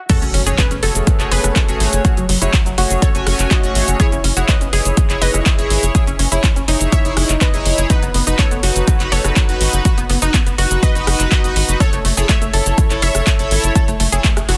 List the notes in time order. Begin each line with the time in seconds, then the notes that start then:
0.09 A3 C#4 F#4 G#4 A4 C#5, kick, closed hi-hat, crash, impact, shaker
0.22 F#1 C#4, closed hi-hat, shaker
0.34 F#1 C#4, open hi-hat
0.46 F#1 A3 C#4 F#4 G#4 C#5, closed hi-hat, shaker
0.58 C#4 G#4 B4, kick, clap, closed hi-hat, shaker
0.71 F#1 C#4, closed hi-hat, shaker
0.83 F#1 A3 C#4 F#4 G#4 A4 C#5, open hi-hat
0.95 F#1, closed hi-hat, shaker
1.07 kick, closed hi-hat, shaker
1.20 F#1 A3 C#4 F#4 G#4 C#5, clap, closed hi-hat, shaker
1.32 F#1 G#4 B4, open hi-hat
1.44 F#1, cross-stick, closed hi-hat, shaker
1.56 kick, clap, closed hi-hat, shaker
1.68 F#1 A3 C#4 F#4 G#4 C#5, closed hi-hat, shaker
1.80 G#1, open hi-hat
1.93 F#1, closed hi-hat, shaker
2.05 A3 C#4 F#4 G#4 C#5, kick, closed hi-hat, shaker
2.17 F#1 F#3, closed hi-hat, shaker
2.29 F#1 F#3, open hi-hat
2.42 F#1 A3 C#4 E4 F#4 G#4 C#5, closed hi-hat, shaker
2.53 F#3, kick, clap, closed hi-hat, shaker
2.66 F#1 F#3, closed hi-hat, shaker
2.78 F#1 A3 C#4 F#4 G#4 C#5, open hi-hat
2.90 F#1, closed hi-hat, shaker
3.02 A4 C#5, kick, closed hi-hat, shaker
3.15 F#1 A3 C#4 F#4 C#5 G#5, closed hi-hat, shaker
3.27 F#1, cross-stick, open hi-hat
3.39 F#1, clap, closed hi-hat, shaker
3.51 F#4 D#5, kick, clap, closed hi-hat, shaker
3.63 F#1 A3 C#4 F#4 G#4 C#5, closed hi-hat, shaker
3.75 G#1, open hi-hat
3.88 F#1, closed hi-hat, shaker
4.00 E4 G#4 C#5, kick, closed hi-hat, shaker
4.12 F#1 C#4, closed hi-hat, shaker
4.24 F#1 C#4, open hi-hat
4.37 F#1 E4 F#4 G#4 C#5, closed hi-hat, shaker
4.48 C#4 B4 D#5, kick, clap, closed hi-hat, shaker
4.61 F#1 C#4, closed hi-hat, shaker
4.73 F#1 E4 G#4 C#5, open hi-hat
4.85 F#1, closed hi-hat, shaker
4.97 kick, closed hi-hat, shaker
5.10 F#1 E4 G#4 C#5, clap, closed hi-hat, shaker
5.21 F#1 B4 D#5, open hi-hat
5.34 F#1, cross-stick, closed hi-hat, shaker
5.46 kick, clap, closed hi-hat, shaker
5.59 F#1 E4 G#4 C#5, closed hi-hat, shaker
5.70 G#1, open hi-hat
5.83 F#1, closed hi-hat, shaker
5.95 E4 G#4 C#5, kick, closed hi-hat, shaker
6.07 F#1 C#4, closed hi-hat, shaker
6.19 F#1 C#4, open hi-hat
6.32 F#1 E4 G#4 C#5, closed hi-hat, shaker
6.44 C#4, kick, clap, closed hi-hat, shaker
6.56 F#1 C#4, closed hi-hat, shaker
6.68 F#1 D#4 E4 G#4 C#5, open hi-hat
6.81 F#1, closed hi-hat, shaker
6.92 C#5 E5, kick, closed hi-hat, shaker
7.05 F#1 E4 G#4 C#5, closed hi-hat, shaker
7.17 F#1 E4 G#4 C#5, cross-stick, open hi-hat
7.29 F#1, clap, closed hi-hat, shaker
7.41 B4 D#5, kick, clap, closed hi-hat, shaker
7.54 F#1 E4 G#4 C#5, closed hi-hat, shaker
7.65 F#1, open hi-hat
7.78 F#1, closed hi-hat, shaker
7.90 D#4 F#4 B4, kick, closed hi-hat, shaker
8.03 F#1 B3, closed hi-hat, shaker
8.14 F#1 B3, open hi-hat
8.27 F#1 D#4 F#4 B4, closed hi-hat, shaker
8.39 B3 A4 C#5, kick, clap, closed hi-hat, shaker
8.51 F#1 B3, closed hi-hat, shaker
8.63 F#1 D#4 F#4 B4, open hi-hat
8.76 F#1, closed hi-hat, shaker
8.88 kick, closed hi-hat, shaker
9.00 F#1 D#4 F#4 B4, clap, closed hi-hat, shaker
9.12 F#1 A4 C#5, open hi-hat
9.24 F#1, cross-stick, closed hi-hat, shaker
9.36 kick, clap, closed hi-hat, shaker
9.49 F#1 D#4 F#4 B4, closed hi-hat, shaker
9.61 G#1, open hi-hat
9.73 F#1, closed hi-hat, shaker
9.85 F#4, kick, closed hi-hat, shaker
9.98 F#1 B3, closed hi-hat, shaker
10.10 F#1 B3, open hi-hat
10.22 F#1 D#4 F#4 B4, closed hi-hat, shaker
10.34 B3, kick, clap, closed hi-hat, shaker
10.46 F#1 B3, closed hi-hat, shaker
10.58 F#1 D#4 F#4 B4, open hi-hat
10.71 F#1, closed hi-hat, shaker
10.83 B4 D#5, kick, closed hi-hat, shaker
10.95 F#1 D#4 F#4 B4, closed hi-hat, shaker
11.07 F#1, cross-stick, open hi-hat
11.20 F#1, clap, closed hi-hat, shaker
11.32 B4 D#5, kick, clap, closed hi-hat, shaker
11.44 F#1 D#4 F#4 B4, closed hi-hat, shaker
11.56 G#1, open hi-hat
11.69 F#1, closed hi-hat, shaker
11.80 A4 C#5, kick, closed hi-hat, shaker
11.93 F#1 A3, closed hi-hat, shaker
12.05 F#1 A3, open hi-hat
12.17 F#1 E4 G#4 A4 C#5, closed hi-hat, shaker
12.29 A3 C#5 E5, kick, clap, closed hi-hat, shaker
12.42 F#1 A3, closed hi-hat, shaker
12.53 F#1 E4 A4 C#5, open hi-hat
12.66 F#1, closed hi-hat, shaker
12.78 kick, closed hi-hat, shaker
12.90 F#1 E4 A4 C#5, clap, closed hi-hat, shaker
13.02 F#1 C#5 E5, open hi-hat
13.15 F#1, cross-stick, closed hi-hat, shaker
13.27 kick, clap, closed hi-hat, shaker
13.39 F#1 E4 A4 C#5, closed hi-hat, shaker
13.51 G#1, open hi-hat
13.64 F#1, closed hi-hat, shaker
13.75 A4, kick, closed hi-hat, shaker
13.88 F#1 A3, closed hi-hat, shaker
14.00 F#1 A3, open hi-hat
14.12 F#1 E4 G#4 A4 C#5, closed hi-hat, shaker
14.24 A3, kick, clap, closed hi-hat, shaker
14.37 F#1 A3, cross-stick, closed hi-hat, shaker
14.49 F#1 E4 F#4 A4 C#5, open hi-hat